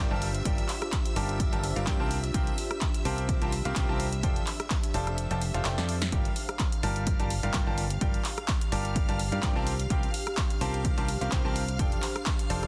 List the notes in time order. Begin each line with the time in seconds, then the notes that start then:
Already playing: D4 F4 G4 C5 E5 E6
0.11 G1 G3 F4 G4 A#4 D5 A5
0.22 open hi-hat
0.35 closed hi-hat
0.45 G3 F4 G4 A#4 D5 G5, kick, closed hi-hat
0.58 closed hi-hat
0.69 clap, open hi-hat
0.82 cross-stick, closed hi-hat
0.92 kick, clap, closed hi-hat
1.05 closed hi-hat
1.16 G1 G3 F4 G4 A#4 D5 A5, open hi-hat
1.29 closed hi-hat
1.40 kick, closed hi-hat
1.52 G1 G3 F4 G4 A#4 D5 A5, closed hi-hat
1.64 open hi-hat
1.76 G1 G3 F4 G4 A#4 D5 F5, closed hi-hat
1.87 G2 C4 F4 G4 A#4 D5 G5, kick, clap, closed hi-hat
2.00 C2 C4 F4 G4 A#4 C5 A5
2.11 open hi-hat
2.24 closed hi-hat
2.34 C2 C4 F4 G4 A#4 C5 G5, kick, closed hi-hat
2.47 closed hi-hat
2.58 open hi-hat
2.71 cross-stick, closed hi-hat
2.81 kick, clap, closed hi-hat
2.94 closed hi-hat
3.05 C2 C4 F4 G4 A#4 C5 A5, open hi-hat
3.18 closed hi-hat
3.29 kick, closed hi-hat
3.42 C2 C4 F4 G4 A#4 C5 A5, closed hi-hat
3.52 open hi-hat
3.65 C2 C4 F4 G4 A#4 C5 F5, closed hi-hat
3.76 C4 F4 G4 A#4 C5 G5, kick, clap, closed hi-hat
3.89 C2 C4 F4 G4 A#4 C5 A5
4.00 open hi-hat
4.13 closed hi-hat
4.23 F1 F3 F4 A4 C5 D5 G5, kick, closed hi-hat
4.36 closed hi-hat
4.47 clap, open hi-hat
4.60 cross-stick, closed hi-hat
4.67 E5, kick, clap, closed hi-hat
4.83 closed hi-hat
4.94 F1 F3 F4 A4 C5 D5 A5, open hi-hat
5.07 cross-stick, closed hi-hat
5.18 closed hi-hat
5.31 F1 F3 F4 A4 C5 D5 A5, closed hi-hat
5.42 open hi-hat
5.54 F1 F3 F4 A4 C5 D5 F5, closed hi-hat
5.65 F1 F3 F4 A4 C5 D5 G5, clap, closed hi-hat
5.78 F2 F3 F4 A4 C5 D5 A5, snare, closed hi-hat
5.89 open hi-hat
6.02 snare, closed hi-hat
6.12 G1 G3 D4 F4 G4 A#4 D5 F5 G5 F6, kick, closed hi-hat
6.25 closed hi-hat
6.36 G4, open hi-hat
6.49 cross-stick, closed hi-hat
6.59 kick, clap, closed hi-hat
6.72 closed hi-hat
6.83 G1 G3 F4 G4 A#4 D5 A5, open hi-hat
6.96 closed hi-hat
7.07 kick, closed hi-hat
7.20 G1 G3 F4 G4 A#4 D5 A5, closed hi-hat
7.30 open hi-hat
7.43 G1 G3 F4 G4 A#4 D5 F5, closed hi-hat
7.54 G1 G3 F4 G4 A#4 D5 G5, kick, clap, closed hi-hat
7.67 G1 G3 F4 G4 A#4 D5 A5
7.78 open hi-hat
7.90 closed hi-hat
8.01 G3 F4 G4 A#4 D5 G5, kick, closed hi-hat
8.14 closed hi-hat
8.24 clap, open hi-hat
8.38 cross-stick, closed hi-hat
8.48 kick, clap, closed hi-hat
8.61 closed hi-hat
8.72 G1 G3 F4 G4 A#4 D5 A5, open hi-hat
8.85 closed hi-hat
8.96 kick, closed hi-hat
9.08 G1 G3 F4 G4 A#4 D5 A5, closed hi-hat
9.19 open hi-hat
9.32 G2 G3 F4 G4 A#4 D5 F5, closed hi-hat
9.43 G2 C4 F4 G4 A#4 D5 G5, kick, clap, closed hi-hat
9.56 C2 C4 F4 G4 A#4 C5 A5
9.67 open hi-hat
9.80 closed hi-hat
9.90 C2 C4 F4 G4 A#4 C5 G5, kick, closed hi-hat
10.03 C5, closed hi-hat
10.14 open hi-hat
10.27 cross-stick, closed hi-hat
10.37 kick, clap, closed hi-hat
10.50 closed hi-hat
10.61 C2 C4 F4 G4 A#4 C5 A5, open hi-hat
10.74 closed hi-hat
10.85 kick, closed hi-hat
10.97 C2 C4 F4 G4 A#4 C5 A5, closed hi-hat
11.08 open hi-hat
11.21 C2 C4 F4 G4 A#4 C5 F5, closed hi-hat
11.32 C4 F4 G4 A#4 C5 G5, kick, clap, closed hi-hat
11.45 C2 C4 F4 G4 A#4 C5 A5
11.56 open hi-hat
11.69 closed hi-hat
11.79 F1 F3 F4 A4 C5 D5 G5, kick, closed hi-hat
11.92 closed hi-hat
12.02 clap, open hi-hat
12.16 cross-stick, closed hi-hat
12.26 kick, clap, closed hi-hat
12.39 closed hi-hat
12.50 F1 F3 F4 A4 C5 D5 A5, open hi-hat
12.63 cross-stick, closed hi-hat